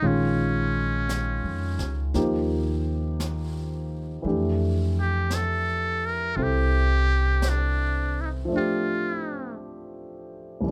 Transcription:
0.02 A#1 D#3 G#3 C#4 F4, brush sweep
0.07 C#4
1.09 brush sweep, snare, hi-hat pedal
1.44 F2
1.78 C#2, snare
2.14 D#2 F3 A#3 D#4 G4, brush sweep, snare
3.20 brush sweep, snare, hi-hat pedal
4.22 F2 E3 A3 D4, brush sweep
4.27 G4
5.00 G4
5.30 A4, brush sweep, snare, hi-hat pedal
6.06 A#4
6.36 C2 C4 E4 F4 A4, brush sweep
6.43 G4
7.42 brush sweep, snare, hi-hat pedal
7.49 D4
8.21 E4
8.26 D#4
8.45 F3 A3
8.53 D4 F4 G4
10.61 C2 E3
10.66 A3

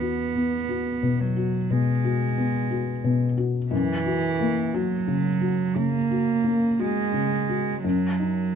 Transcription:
Already playing: E2 B3
0.01 F#4
0.35 B3
0.69 F#4
1.03 B2
1.20 F#3
1.36 F#4
1.70 B2 G#3
2.05 F#4
2.38 B3
2.71 F#4
3.04 B2
3.37 F#4
3.71 F#2 E3
4.06 F#4
4.40 A#3
4.74 F#3 F#4
5.08 C#3
5.41 F#4
5.75 C#3 A#3
6.11 F#4
6.44 A#3
6.79 G#3 F#4
7.13 C#3
7.49 F#4
7.84 F#2 F#3
8.20 D#4

